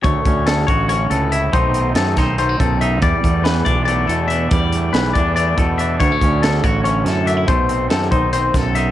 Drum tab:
HH |xxxxxxx|xxxxxxx|xxxxxxx|xxxxxxx|
SD |--o----|--oo---|--o----|--o----|
BD |oo-o---|o--o-o-|oo-o---|o--o-o-|

HH |xxxxxxx|xxxxxxx|
SD |--o--o-|--o--o-|
BD |oo-o---|o--o-o-|